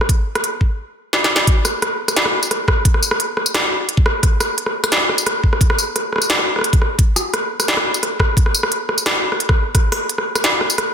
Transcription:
0.01 cross-stick medium
0.09 kick loud
0.09 closed hi-hat medium
0.35 cross-stick medium
0.35 closed hi-hat soft
0.44 closed hi-hat medium
0.61 kick medium
1.13 snare medium
1.24 snare medium
1.36 snare medium
1.47 kick loud
1.47 closed hi-hat medium
1.65 cross-stick medium
1.65 tambourine medium
1.82 cross-stick medium
1.82 closed hi-hat medium
2.08 cross-stick medium
2.08 tambourine medium
2.17 snare loud
2.17 closed hi-hat medium
2.25 cross-stick medium
2.43 tambourine medium
2.51 cross-stick medium
2.51 closed hi-hat medium
2.68 kick medium
2.68 cross-stick medium
2.85 kick loud
2.85 closed hi-hat medium
2.94 cross-stick medium
3.03 tambourine medium
3.11 cross-stick medium
3.20 closed hi-hat medium
3.37 cross-stick medium
3.46 tambourine medium
3.54 cross-stick medium
3.54 snare loud
3.54 closed hi-hat medium
3.89 closed hi-hat medium
3.97 kick loud
4.06 cross-stick medium
4.23 kick loud
4.23 cross-stick soft
4.23 closed hi-hat medium
4.40 cross-stick medium
4.40 tambourine medium
4.58 closed hi-hat medium
4.66 cross-stick medium
4.84 cross-stick medium
4.84 tambourine medium
4.92 snare loud
4.92 closed hi-hat medium
5.09 cross-stick medium
5.18 tambourine medium
5.26 cross-stick medium
5.26 closed hi-hat medium
5.44 kick medium
5.53 cross-stick medium
5.61 kick loud
5.61 closed hi-hat medium
5.70 cross-stick medium
5.78 tambourine medium
5.96 cross-stick soft
5.96 closed hi-hat medium
6.13 cross-stick soft
6.16 cross-stick soft
6.18 cross-stick medium
6.18 tambourine medium
6.30 snare loud
6.30 closed hi-hat medium
6.39 cross-stick medium
6.56 cross-stick soft
6.59 cross-stick soft
6.61 cross-stick medium
6.61 closed hi-hat medium
6.73 kick loud
6.73 closed hi-hat soft
6.82 cross-stick medium
6.99 kick loud
6.99 closed hi-hat medium
7.16 cross-stick soft
7.16 tambourine medium
7.34 cross-stick medium
7.34 closed hi-hat medium
7.60 cross-stick soft
7.60 tambourine medium
7.68 snare loud
7.68 closed hi-hat medium
7.77 cross-stick medium
7.94 tambourine medium
8.03 cross-stick soft
8.03 closed hi-hat medium
8.20 kick medium
8.20 cross-stick medium
8.37 kick loud
8.37 closed hi-hat medium
8.46 cross-stick medium
8.54 tambourine medium
8.63 cross-stick medium
8.72 closed hi-hat medium
8.89 cross-stick medium
8.98 tambourine medium
9.06 cross-stick medium
9.06 snare loud
9.06 closed hi-hat medium
9.32 cross-stick medium
9.40 closed hi-hat medium
9.49 kick loud
9.49 cross-stick medium
9.75 kick loud
9.75 cross-stick medium
9.75 closed hi-hat medium
9.92 cross-stick medium
9.92 tambourine medium
10.09 closed hi-hat medium
10.18 cross-stick medium
10.35 cross-stick medium
10.35 tambourine medium
10.44 snare loud
10.44 closed hi-hat medium
10.61 cross-stick medium
10.70 tambourine medium
10.78 cross-stick medium
10.78 closed hi-hat medium

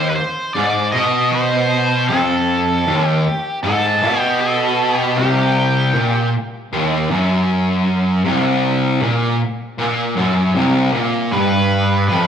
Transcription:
0.00 0.15 D#2 loud
0.10 0.15 B4 medium
0.15 0.55 C5 medium
0.53 0.92 G#2 medium
0.53 0.90 D5 loud
0.92 2.08 B2 loud
0.92 1.32 D#5 medium
1.31 2.08 C5 medium
2.09 2.85 F2 loud
2.09 3.09 A4 medium
2.87 3.24 D#2 loud
3.09 3.59 G4 medium
3.63 4.01 G#2 loud
3.63 4.21 A4 medium
4.02 5.16 B2 loud
4.21 4.39 G4 medium
4.41 4.99 A4 medium
4.99 5.17 G4 medium
5.17 5.93 C2 loud
5.17 6.28 G4 medium
5.95 6.32 A#2 loud
6.73 7.09 D#2 loud
7.10 8.24 F#2 medium
8.25 9.01 C2 loud
9.02 9.39 A#2 loud
9.78 10.16 A#2 medium
10.16 10.54 F#2 loud
10.55 10.93 C2 loud
10.93 11.31 A#2 loud
11.32 12.08 G2 loud
11.32 12.07 B4 medium
12.08 12.27 F2 loud
12.08 12.27 B4 loud

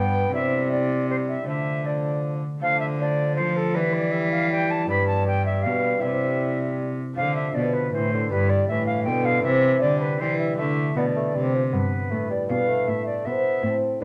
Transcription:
0.00 0.32 G2 medium
0.00 0.35 G2 soft
0.00 0.32 B3 medium
0.00 0.33 B3 soft
0.00 0.34 D4 soft
0.00 0.32 G5 medium
0.31 1.42 C3 medium
0.31 1.49 C3 medium
0.31 1.04 G3 medium
0.31 1.47 C4 medium
0.31 1.48 E4 soft
0.31 0.70 E5 medium
0.71 1.08 D5 medium
1.10 1.49 G3 medium
1.10 1.16 C5 medium
1.28 1.46 E5 medium
1.44 2.62 D3 soft
1.44 2.40 D3 medium
1.44 1.85 F3 soft
1.44 1.81 A3 soft
1.44 1.83 A4 soft
1.44 1.87 E5 medium
1.83 2.42 F3 soft
1.83 2.59 A3 soft
1.83 2.60 A4 soft
1.83 2.33 D5 medium
2.60 3.39 D3 medium
2.60 3.78 D3 medium
2.60 2.97 F3 medium
2.60 2.96 A3 soft
2.60 2.98 A4 medium
2.60 2.79 F5 medium
2.79 2.85 E5 medium
2.98 3.77 F3 medium
2.98 3.76 A3 soft
2.98 3.77 A4 medium
2.98 3.35 D5 medium
3.36 3.77 F3 medium
3.36 3.57 C5 medium
3.56 3.76 A4 medium
3.74 4.90 E3 medium
3.74 4.88 E3 medium
3.74 4.13 G3 medium
3.74 4.89 E4 medium
3.74 4.86 G4 medium
3.74 3.94 B4 loud
3.93 4.13 D5 medium
4.11 4.50 G3 medium
4.11 4.30 E5 medium
4.31 4.50 F5 medium
4.51 4.88 G3 medium
4.51 4.72 G5 medium
4.70 4.89 A5 medium
4.86 5.66 G2 medium
4.86 6.04 G2 medium
4.86 5.26 G3 medium
4.86 6.02 B3 medium
4.86 6.03 D4 medium
4.86 5.99 G4 medium
4.86 5.06 B5 loud
5.07 5.26 A5 medium
5.27 6.01 G3 medium
5.27 5.45 G5 medium
5.45 5.63 E5 medium
5.62 6.04 B2 medium
5.62 6.01 B2 medium
5.62 6.01 F5 medium
5.98 7.18 C3 medium
5.98 6.96 G3 medium
5.98 7.17 C4 soft
5.98 7.17 E4 soft
5.98 7.18 G4 soft
5.98 6.78 E5 medium
6.02 6.96 C3 medium
7.13 8.32 D3 medium
7.13 8.31 A3 soft
7.13 8.28 D4 soft
7.13 8.32 F4 soft
7.13 7.34 F5 medium
7.17 7.53 D3 medium
7.17 7.95 F3 medium
7.35 7.56 E5 medium
7.54 7.93 B2 medium
7.54 8.33 B2 soft
7.54 7.75 D5 medium
7.73 7.92 B4 medium
7.93 8.31 A2 medium
7.93 8.33 A2 medium
7.93 8.13 E3 medium
7.93 8.29 C5 medium
8.13 8.32 D3 medium
8.29 9.46 G2 medium
8.29 8.69 G2 medium
8.29 8.69 G3 medium
8.29 9.45 D4 medium
8.29 9.42 G4 medium
8.29 8.51 B4 medium
8.49 8.67 D5 medium
8.68 9.08 A2 medium
8.68 9.47 A2 medium
8.68 9.10 E3 medium
8.68 8.85 E5 medium
8.86 9.03 F5 medium
9.04 9.44 B2 medium
9.04 9.26 G5 medium
9.08 9.47 B2 medium
9.08 9.46 D3 medium
9.25 9.42 F5 loud
9.41 10.59 C3 medium
9.41 9.81 C3 medium
9.41 9.84 E3 medium
9.41 10.58 C4 medium
9.41 10.59 G4 medium
9.41 9.80 E5 loud
9.81 10.19 D3 medium
9.81 10.57 D3 medium
9.81 10.20 G3 medium
9.81 9.99 D5 medium
10.00 10.21 B4 medium
10.19 10.60 E3 medium
10.19 10.57 E3 medium
10.19 10.61 G3 medium
10.19 10.38 C5 medium
10.38 10.56 E5 medium
10.56 10.95 D3 medium
10.56 11.75 D3 soft
10.56 10.93 A3 soft
10.56 10.95 D4 soft
10.56 10.99 E5 medium
10.60 10.94 A3 medium
10.94 11.34 B2 medium
10.94 11.74 A3 soft
10.94 11.75 B3 soft
10.94 11.05 B3 medium
10.94 12.12 D4 soft
10.94 11.55 D5 medium
11.16 11.37 A3 medium
11.35 11.72 C3 medium
11.35 11.75 C3 medium
11.35 11.54 G3 medium
11.55 11.63 F3 medium
11.73 12.09 G2 medium
11.73 12.89 G2 soft
11.73 12.12 B3 soft
11.73 12.33 B4 medium
12.11 12.47 A2 medium
12.11 12.86 A2 soft
12.11 12.30 A3 soft
12.11 12.47 B3 soft
12.11 12.48 D4 soft
12.30 12.49 G3 medium
12.30 12.48 D5 medium
12.48 12.88 B2 soft
12.48 12.85 B2 medium
12.48 12.70 G3 medium
12.48 12.88 B3 soft
12.48 12.89 D4 soft
12.48 12.89 F5 medium
12.69 13.29 A3 soft
12.87 13.61 A2 soft
12.87 13.23 A2 medium
12.87 13.05 E5 medium
13.06 13.26 D5 medium
13.25 13.61 B2 medium
13.25 13.65 B3 soft
13.25 13.62 A4 soft
13.25 14.03 C5 soft
13.25 13.75 E5 medium
13.62 14.03 A2 soft
13.62 13.98 A2 medium
13.62 14.03 C4 soft
13.62 14.00 C4 medium
13.62 14.03 A4 soft
14.00 14.04 G2 soft
14.00 14.04 D4 medium
14.00 14.04 B4 medium

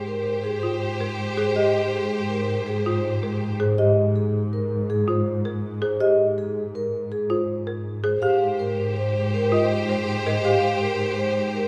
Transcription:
0.00 8.11 G#2 medium
0.00 3.56 G4 medium
0.00 3.56 C5 medium
0.07 0.32 A#4 medium
0.44 0.69 G#4 medium
0.62 0.88 F4 medium
0.62 0.87 C5 soft
1.00 1.25 A#4 medium
1.37 1.62 G#4 medium
1.37 1.62 C5 medium
1.56 1.80 G4 medium
1.56 1.80 D#5 medium
1.92 2.17 G#4 medium
2.29 2.54 A#4 medium
2.66 2.91 G#4 medium
2.85 3.10 F4 medium
2.85 3.10 C5 medium
3.23 3.47 A#4 medium
3.60 3.84 G#4 medium
3.60 3.84 C5 medium
3.78 4.03 G4 medium
3.78 4.02 D#5 medium
4.16 4.40 G#4 medium
4.53 4.77 A#4 medium
4.90 5.14 G#4 medium
5.08 5.32 F4 medium
5.08 5.32 C5 medium
5.45 5.69 A#4 medium
5.82 6.06 G#4 medium
5.82 6.06 C5 medium
6.00 6.25 G4 medium
6.00 6.25 D#5 medium
6.38 6.62 G#4 medium
6.75 6.99 A#4 medium
7.12 7.36 G#4 medium
7.30 7.54 F4 medium
7.30 7.54 C5 medium
7.67 7.91 A#4 medium
8.04 8.28 G#4 medium
8.04 8.28 C5 medium
8.21 11.68 G#2 medium
8.21 11.68 G4 medium
8.21 8.47 G4 medium
8.21 11.68 C5 medium
8.21 8.47 F5 medium
8.59 8.84 A#4 medium
8.96 9.21 C5 medium
9.34 9.58 A#4 medium
9.52 9.76 F4 medium
9.52 9.77 D#5 medium
9.89 10.13 C5 medium
10.26 10.51 A#4 medium
10.26 10.50 D#5 medium
10.44 10.69 G4 medium
10.44 10.69 F5 medium
10.82 11.06 A#4 medium
11.19 11.43 C5 medium
11.55 11.68 A#4 medium

